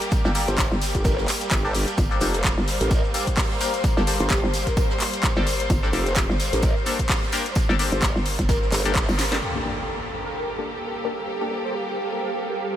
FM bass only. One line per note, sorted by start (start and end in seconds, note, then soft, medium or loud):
0.25 0.46 G1 loud
0.72 0.93 G1 loud
1.98 2.20 G1 medium
2.58 2.79 G1 medium
3.97 4.18 G1 loud
4.44 4.65 G1 medium
5.37 5.68 G1 medium
5.70 5.92 G1 loud
6.30 6.51 G1 medium
7.69 7.90 G1 loud
8.16 8.37 G1 medium
8.39 8.71 G1 medium
9.09 9.40 G1 loud